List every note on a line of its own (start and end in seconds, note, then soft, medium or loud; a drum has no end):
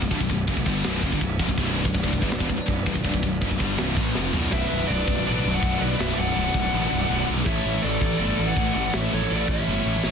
0.02 0.11 B0 medium
0.02 0.11 B1 medium
0.02 0.12 F#2 medium
0.02 kick medium
0.11 0.20 C1 loud
0.11 0.20 C2 medium
0.11 0.20 G2 loud
0.11 kick loud
0.11 china medium
0.21 0.29 B0 medium
0.21 0.30 B1 medium
0.21 0.30 F#2 medium
0.21 kick medium
0.30 0.46 B0 medium
0.30 0.45 B1 medium
0.30 0.45 F#2 medium
0.30 kick medium
0.47 0.56 F#1 loud
0.47 0.57 F#2 medium
0.47 0.57 C#3 loud
0.47 kick loud
0.47 china medium
0.57 0.66 B0 medium
0.57 0.67 B1 medium
0.57 0.67 F#2 medium
0.57 kick medium
0.66 0.83 G1 loud
0.66 0.85 G2 loud
0.66 0.85 D3 loud
0.66 0.85 G3 loud
0.66 kick medium
0.84 1.02 B0 loud
0.84 1.03 B1 loud
0.84 1.03 F#2 loud
0.84 1.04 B2 loud
0.84 snare loud
0.84 china medium
1.03 1.12 F#1 loud
1.03 1.12 F#2 loud
1.03 1.12 C#3 loud
1.03 kick loud
1.12 1.21 G1 loud
1.12 1.21 G2 medium
1.12 1.21 D3 loud
1.12 kick medium
1.21 1.38 B0 medium
1.21 1.37 B1 medium
1.21 1.37 F#2 medium
1.21 kick medium
1.21 china medium
1.39 1.48 F1 loud
1.39 1.48 F2 loud
1.39 1.49 C3 loud
1.39 kick loud
1.49 1.57 B0 medium
1.49 1.58 B1 medium
1.49 1.58 F#2 medium
1.49 kick loud
1.57 1.84 B0 medium
1.57 1.86 B1 loud
1.57 1.86 F#2 medium
1.57 1.86 B2 loud
1.57 4.49 F#3 medium
1.57 4.49 D4 medium
1.57 4.49 B4 medium
1.57 4.49 D5 medium
1.57 kick loud
1.57 china medium
1.85 1.94 B0 medium
1.85 1.94 B1 medium
1.85 1.94 F#2 medium
1.85 kick loud
1.94 2.03 B0 medium
1.94 2.03 B1 medium
1.94 2.04 F#2 medium
1.94 kick loud
1.94 china medium
2.04 2.12 D1 loud
2.04 2.12 D2 loud
2.04 2.13 A2 loud
2.04 kick loud
2.13 2.22 B0 medium
2.13 2.22 B1 medium
2.13 2.22 F#2 medium
2.13 kick medium
2.22 2.31 G1 loud
2.22 2.31 G2 loud
2.22 2.31 D3 loud
2.22 kick medium
2.31 2.40 B0 medium
2.31 2.40 B1 medium
2.31 2.41 F#2 medium
2.31 snare loud
2.31 china medium
2.40 2.49 E1 loud
2.40 2.49 E2 loud
2.40 2.49 B2 loud
2.40 kick loud
2.50 2.58 B0 medium
2.50 2.58 B1 medium
2.50 2.59 F#2 medium
2.50 kick medium
2.59 muted distorted electric guitar stroke medium
2.59 muted picked electric bass stroke soft
2.68 2.85 B0 medium
2.68 2.83 B1 medium
2.68 2.83 F#2 medium
2.68 kick medium
2.68 china medium
2.86 2.95 B0 loud
2.86 2.95 B1 loud
2.86 2.96 F#2 loud
2.86 kick loud
2.95 3.04 B0 medium
2.95 3.06 B1 medium
2.95 3.06 F#2 medium
2.95 kick medium
3.05 3.13 C1 loud
3.05 3.14 C2 loud
3.05 3.15 G2 loud
3.05 kick loud
3.05 china medium
3.14 3.23 B0 medium
3.14 3.23 B1 medium
3.14 3.24 F#2 medium
3.14 kick medium
3.23 3.40 B0 medium
3.23 3.39 B1 medium
3.23 3.39 F#2 medium
3.23 kick medium
3.42 3.50 F#1 loud
3.42 3.51 F#2 medium
3.42 3.51 C#3 medium
3.42 kick loud
3.42 china medium
3.51 3.60 B0 medium
3.51 3.60 B1 medium
3.51 3.61 F#2 medium
3.51 kick medium
3.60 3.77 G1 loud
3.60 3.78 G2 loud
3.60 3.78 D3 loud
3.60 3.79 G3 loud
3.60 kick medium
3.78 3.96 C1 medium
3.78 3.97 C2 loud
3.78 3.97 G2 medium
3.78 3.97 C3 loud
3.78 snare loud
3.78 china medium
3.97 4.14 A1 loud
3.97 4.15 A2 medium
3.97 4.15 E3 loud
3.97 4.16 A3 loud
3.97 kick loud
4.15 4.33 F1 loud
4.15 4.34 F2 loud
4.15 4.34 C3 loud
4.15 4.34 F3 loud
4.15 snare medium
4.33 4.51 B0 medium
4.33 4.52 B1 medium
4.33 4.52 F#2 loud
4.33 4.53 B2 loud
4.33 floor tom medium
4.52 4.65 B0 medium
4.52 4.70 B1 medium
4.52 4.70 F#2 medium
4.52 4.70 B2 loud
4.52 5.07 F#3 loud
4.52 5.06 D4 loud
4.52 4.87 B4 medium
4.52 4.90 E5 loud
4.52 kick loud
4.52 crash medium
4.71 4.83 B0 medium
4.71 4.80 B1 medium
4.71 4.80 F#2 medium
4.81 4.89 B1 medium
4.81 4.90 F#2 medium
4.88 5.02 B0 loud
4.88 5.06 B1 medium
4.88 5.07 F#2 medium
4.88 5.23 B4 medium
4.88 5.22 D5 medium
4.88 crash medium
5.06 5.20 B0 loud
5.06 5.18 B1 medium
5.06 5.17 F#2 loud
5.06 5.98 B2 medium
5.06 5.98 F#3 medium
5.06 5.98 D4 medium
5.06 kick medium
5.18 5.27 B1 medium
5.18 5.27 F#2 medium
5.25 5.39 A1 loud
5.25 5.44 B1 loud
5.25 5.44 F#2 medium
5.25 5.45 B2 loud
5.25 5.51 B4 medium
5.25 5.55 D5 medium
5.25 crash medium
5.45 5.57 B0 loud
5.45 5.55 B1 medium
5.45 5.54 F#2 medium
5.52 5.63 F#2 loud
5.52 5.78 D5 loud
5.52 5.82 F#5 loud
5.56 5.63 B1 medium
5.63 5.76 B0 loud
5.63 5.80 B1 loud
5.63 5.81 F#2 loud
5.63 5.81 B2 loud
5.63 kick medium
5.63 crash medium
5.79 5.94 B1 medium
5.79 5.91 B1 medium
5.79 5.91 F#2 medium
5.79 5.96 B4 medium
5.79 5.98 D5 medium
5.92 5.98 B1 medium
5.92 5.98 F#2 medium
5.97 6.12 B0 loud
5.97 6.16 B1 medium
5.97 6.16 F#2 loud
5.97 6.17 B2 loud
5.97 6.52 F#3 loud
5.97 6.51 D4 loud
5.97 6.14 B4 medium
5.97 6.16 E5 loud
5.97 snare loud
5.97 crash medium
6.14 6.30 B0 medium
6.14 6.26 B1 medium
6.14 6.25 F#2 medium
6.14 6.32 D5 medium
6.19 6.37 F#5 loud
6.27 6.35 B1 medium
6.27 6.35 F#2 medium
6.33 6.49 B0 loud
6.33 6.53 B1 medium
6.33 6.53 F#2 medium
6.33 7.22 D5 medium
6.33 crash medium
6.38 7.25 F#5 loud
6.52 6.67 B0 loud
6.52 6.63 B1 medium
6.52 6.63 F#2 medium
6.52 7.45 B2 medium
6.52 7.45 F#3 medium
6.52 7.44 D4 medium
6.52 kick medium
6.64 6.72 B1 medium
6.64 6.73 F#2 loud
6.72 6.86 A1 loud
6.72 6.90 B1 loud
6.72 6.89 F#2 loud
6.72 6.91 B2 loud
6.72 crash medium
6.91 7.04 B0 medium
6.91 6.99 B1 medium
6.91 6.99 F#2 loud
7.00 7.08 B1 medium
7.00 7.08 F#2 medium
7.09 7.23 B0 loud
7.09 7.27 B1 medium
7.09 7.26 F#2 loud
7.09 7.27 B2 loud
7.09 crash medium
7.28 7.36 B1 medium
7.28 7.42 B1 medium
7.28 7.36 F#2 medium
7.37 7.46 B1 medium
7.37 7.46 F#2 medium
7.45 7.59 A1 loud
7.45 7.64 A2 loud
7.45 7.63 E3 loud
7.45 7.64 A3 loud
7.45 8.01 C#4 loud
7.45 8.01 E4 loud
7.45 8.00 A4 loud
7.45 7.80 C#5 medium
7.45 7.81 E5 loud
7.45 kick loud
7.45 crash medium
7.65 7.78 A1 loud
7.65 7.73 A2 medium
7.65 7.73 E3 medium
7.74 7.82 A2 medium
7.74 7.83 E3 medium
7.82 7.96 A1 loud
7.82 8.00 A2 medium
7.82 8.00 E3 medium
7.82 8.17 A4 medium
7.82 8.17 D5 medium
7.82 crash medium
8.00 8.14 A1 loud
8.00 8.11 A2 medium
8.00 8.10 E3 medium
8.00 8.92 A3 medium
8.00 8.92 C#4 medium
8.00 8.92 E4 medium
8.00 8.92 A4 loud
8.00 kick medium
8.12 8.19 A2 medium
8.12 8.20 E3 medium
8.18 8.32 G1 loud
8.18 8.38 A2 loud
8.18 8.37 E3 loud
8.18 8.38 A3 loud
8.18 8.46 A4 medium
8.18 8.45 D5 loud
8.18 crash medium
8.39 8.51 A1 loud
8.39 8.48 A2 medium
8.39 8.47 E3 medium
8.46 8.56 A2 medium
8.46 8.57 E3 medium
8.46 8.73 D5 loud
8.46 8.73 F#5 loud
8.56 8.69 A1 loud
8.56 8.74 A2 loud
8.56 8.75 E3 loud
8.56 8.75 A3 loud
8.56 kick medium
8.56 crash medium
8.74 8.88 A1 medium
8.74 8.84 A2 medium
8.74 8.84 E3 medium
8.74 8.93 D5 medium
8.74 8.94 F#5 loud
8.85 8.93 A2 medium
8.85 8.94 E3 medium
8.93 9.07 A1 loud
8.93 9.11 A2 medium
8.93 9.12 E3 loud
8.93 9.12 A3 loud
8.93 9.48 C#4 loud
8.93 9.47 E4 loud
8.93 9.47 A4 loud
8.93 9.12 C#5 medium
8.93 9.13 E5 loud
8.93 snare loud
8.93 crash medium
9.11 9.25 A1 medium
9.11 9.21 A2 medium
9.11 9.21 E3 medium
9.11 9.27 A4 medium
9.11 9.32 C#5 medium
9.22 9.30 A2 medium
9.22 9.30 E3 medium
9.28 9.44 A1 loud
9.28 9.47 A2 medium
9.28 9.47 E3 medium
9.28 9.46 A4 medium
9.28 crash medium
9.33 9.49 D5 medium
9.48 9.61 A1 loud
9.48 9.58 A2 medium
9.48 9.58 E3 medium
9.48 10.11 A3 medium
9.48 10.11 C#4 medium
9.48 10.11 E4 medium
9.48 10.11 A4 medium
9.48 10.11 C#5 medium
9.48 10.11 E5 loud
9.48 kick medium
9.59 9.68 A2 medium
9.59 9.68 E3 loud
9.66 9.80 G1 medium
9.66 9.85 A2 loud
9.66 9.85 E3 loud
9.66 9.85 A3 loud
9.66 crash medium
9.86 9.98 A1 medium
9.86 9.96 A2 medium
9.86 9.95 E3 medium
9.96 10.04 A2 medium
9.96 10.04 E3 medium
10.04 10.11 A1 loud
10.04 10.11 A2 loud
10.04 10.11 E3 medium
10.04 10.11 A3 loud
10.04 snare medium